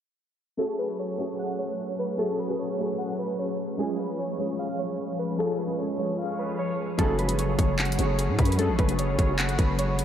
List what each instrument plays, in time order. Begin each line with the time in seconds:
0.57 ambient pad F#3 A3 C#4 G#4, grand piano A3 C#4 F#4 G#4, synth keys A4
0.78 synth keys B4
0.99 synth keys C#5
1.18 grand piano A3 C#4 F#4 G#4, synth keys C#5
1.39 synth keys F#5
1.59 synth keys C#5
1.99 synth keys B4
2.17 grand piano A3 C#4 F#4 G#4, synth keys A4
2.39 synth keys B4
2.47 grand piano A3 C#4 F#4 G#4
2.59 synth keys C#5
2.77 grand piano A3 C#4 F#4 G#4, synth keys C#5
2.98 synth keys F#5
3.19 synth keys B4
3.39 synth keys C#5
3.77 ambient pad F3 G#3, grand piano G#3 C#4 F4 G#4, synth keys G#4
3.99 synth keys B4
4.19 synth keys C#5
4.37 grand piano G#3 C#4 F4 G#4, synth keys C#5
4.59 synth keys F5
4.79 synth keys C#5
5.19 synth keys B4
5.37 grand piano G#3 C#4 F4 G#4, synth keys A4
5.59 synth keys B4
5.67 grand piano G#3 C#4 F4 G#4
5.79 synth keys C#5
5.97 grand piano G#3 C#4 F4 G#4, synth keys C#5
6.18 synth keys F5
6.39 synth keys B4
6.59 synth keys C#5
6.97 808-style bass F#1, brass ensemble A1 G#2 C#3, grand piano F#3 G#3 C#4 F#4 G#4, ambient pad F#3 C#4 G#4, synth keys A4, kick, closed hi-hat
7.19 synth keys B4, closed hi-hat
7.29 closed hi-hat
7.39 synth keys C#5, closed hi-hat
7.59 808-style bass F#1, synth keys C#5, kick, closed hi-hat
7.79 synth keys F#5, clap, closed hi-hat
7.85 closed hi-hat
7.92 closed hi-hat
7.98 808-style bass F#1, grand piano G#3 A3 C#4 F#4 G#4, synth keys C#5, closed hi-hat
8.19 closed hi-hat
8.29 808-style bass A2
8.39 808-style bass F#2, synth keys B4, kick, closed hi-hat
8.45 closed hi-hat
8.52 closed hi-hat
8.58 grand piano G#3 A3 C#4 F#4 G#4, synth keys A4, closed hi-hat
8.69 808-style bass A1
8.79 808-style bass F#1, synth keys B4, kick, closed hi-hat
8.87 grand piano G#3 A3 C#4 F#4 G#4, closed hi-hat
8.99 synth keys C#5, closed hi-hat
9.19 808-style bass F#1, synth keys C#5, kick, closed hi-hat
9.27 grand piano G#3 A3 C#4 F#4 G#4
9.38 synth keys F#5, clap, closed hi-hat
9.49 closed hi-hat
9.59 808-style bass F#1, synth keys B4, kick, closed hi-hat
9.79 synth keys C#5, closed hi-hat
9.99 closed hi-hat